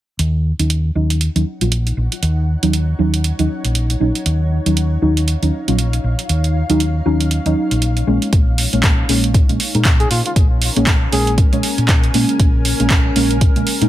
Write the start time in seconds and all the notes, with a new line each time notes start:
0.19 D#2 D#4, closed hi-hat
0.59 D#2 F#3 C#4 D#4 F#5, closed hi-hat
0.70 C#5, closed hi-hat
0.95 D#2 F#3 C#4 D#4
1.10 closed hi-hat
1.21 closed hi-hat
1.36 D#2 F#3 C#4 D#4, closed hi-hat
1.61 A#1 F#3 C#4 F4, closed hi-hat
1.72 closed hi-hat
1.87 closed hi-hat
1.97 A#1
2.12 closed hi-hat
2.22 D#2, closed hi-hat
2.63 D#2 F#3 C#4 D#4, closed hi-hat
2.73 closed hi-hat
2.99 D#2 F#3 C#4 D#4
3.14 closed hi-hat
3.24 closed hi-hat
3.39 D#2 F#3 C#4 D#4, closed hi-hat
3.64 A#1, closed hi-hat
3.75 closed hi-hat
3.90 closed hi-hat
4.00 A#1 F#3 C#4 D#4
4.15 F5, closed hi-hat
4.26 D#2, closed hi-hat
4.66 D#2 F#3 C#4 D#4, closed hi-hat
4.77 closed hi-hat
5.02 D#2 F#3 C#4 D#4
5.17 closed hi-hat
5.28 closed hi-hat
5.42 D#2 F#3 C#4 D#4, closed hi-hat
5.68 A#1 F#3 C#4 F4, closed hi-hat
5.79 closed hi-hat
5.93 closed hi-hat
6.04 A#1
6.19 closed hi-hat
6.29 D#2, closed hi-hat
6.44 closed hi-hat
6.69 D#2 F#3 C#4 D#4, closed hi-hat
6.80 closed hi-hat
7.05 D#2 F#3 C#4 D#4
7.21 closed hi-hat
7.31 closed hi-hat
7.46 D#2 F#3 C#4 D#4, closed hi-hat
7.71 A#1, closed hi-hat
7.82 closed hi-hat
7.97 closed hi-hat
8.07 A#1 G#3 A#3 C#4
8.22 closed hi-hat
8.33 A#1 C#4, kick, closed hi-hat
8.58 open hi-hat
8.73 A#1 G#3 A#3 C#4, closed hi-hat
8.83 kick, clap, closed hi-hat
9.09 A#1 G#3 A#3 C#4, open hi-hat
9.24 closed hi-hat
9.28 A#4
9.34 kick, closed hi-hat
9.49 A#1 G#3 A#3 C#4, closed hi-hat
9.60 open hi-hat
9.75 A#2 G#3 A#3 D#4, closed hi-hat
9.85 kick, clap, closed hi-hat
10.00 G#4, closed hi-hat
10.08 A#2 F4 G#5, open hi-hat
10.25 F4, closed hi-hat
10.36 A#1, kick, closed hi-hat
10.62 open hi-hat
10.76 A#1 G#3 A#3 C#4, closed hi-hat
10.87 kick, clap, closed hi-hat
11.12 A#1 G#3 A#3 C#4 G#4, open hi-hat
11.27 closed hi-hat
11.38 kick, closed hi-hat
11.52 A#1 G#3 A#3 C#4, closed hi-hat
11.63 open hi-hat
11.78 A#2, closed hi-hat
11.89 kick, clap, closed hi-hat
12.04 closed hi-hat
12.14 A#2 G#3 A#3 C#4, open hi-hat
12.29 closed hi-hat
12.40 A#1, kick, closed hi-hat
12.65 open hi-hat
12.80 A#1 G#3 A#3 C#4, closed hi-hat
12.90 kick, clap, closed hi-hat
13.16 A#1 G#3 A#3 C#4, open hi-hat
13.25 G5
13.31 closed hi-hat
13.41 kick, closed hi-hat
13.56 A#1 G#3 A#3 C#4, closed hi-hat
13.67 open hi-hat
13.81 A#2 G#3 A#3 D#4, closed hi-hat